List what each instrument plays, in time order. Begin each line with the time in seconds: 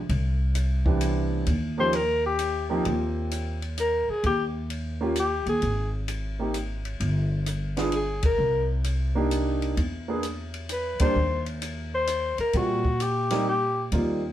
0.09 upright bass C2, kick, ride
0.55 hi-hat pedal, ride
0.85 grand piano E3 B3 C4 D4 G4, kick
1.01 hi-hat pedal, ride
1.46 upright bass D#2, kick, ride
1.78 grand piano F3 A#3 C#4 D#4 G4, alto saxophone C5
1.93 alto saxophone A#4, ride
2.26 alto saxophone G4
2.39 hi-hat pedal, ride
2.69 grand piano F3 A#3 C4 D#4 G4
2.85 upright bass D#2, grand piano A#3 C4 F4 G4, kick, ride
3.31 hi-hat pedal, ride
3.62 ride
3.78 alto saxophone A#4, hi-hat pedal, ride
4.09 alto saxophone G#4, muted upright bass stroke
4.24 upright bass D#2, alto saxophone G4, kick, ride
4.70 ride
5.01 grand piano A#3 C#4 F4 G4
5.16 hi-hat pedal, ride
5.20 alto saxophone G4
5.46 upright bass D#2, alto saxophone G#4, ride
5.62 upright bass G#1, kick, ride
6.08 hi-hat pedal, ride
6.39 grand piano A#3 C4 D#4 G4
6.54 hi-hat pedal, ride
6.85 ride
7.00 upright bass G1, kick, ride
7.46 hi-hat pedal, ride
7.77 grand piano B3 D4 F4 G#4, snare, ride
7.92 ride
7.96 alto saxophone G#4
8.23 alto saxophone A#4, kick, ride
8.38 upright bass C2
8.84 hi-hat pedal, ride
9.15 grand piano A#3 D4 D#4 G4
9.31 hi-hat pedal, ride
9.62 ride
9.77 upright bass E2, kick, ride
10.08 grand piano A#3 B3 D4 G#4
10.23 hi-hat pedal, ride
10.54 ride
10.69 alto saxophone B4, hi-hat pedal, ride
10.99 grand piano G3 A#3 C4 D4, alto saxophone C5, muted upright bass stroke, kick, ride
11.16 upright bass D#2
11.46 ride
11.62 hi-hat pedal, ride
11.95 alto saxophone C5
12.07 hi-hat pedal, ride
12.38 alto saxophone A#4, muted upright bass stroke, ride
12.53 upright bass A#2, grand piano G3 A#3 C4 F4, alto saxophone F#4, kick, ride
12.85 kick
13.00 alto saxophone G4, hi-hat pedal, ride
13.30 grand piano G3 A#3 C4 D#4, snare, ride
13.49 alto saxophone G4
13.92 upright bass D#2, grand piano G3 A#3 C4 D#4 F4, kick, ride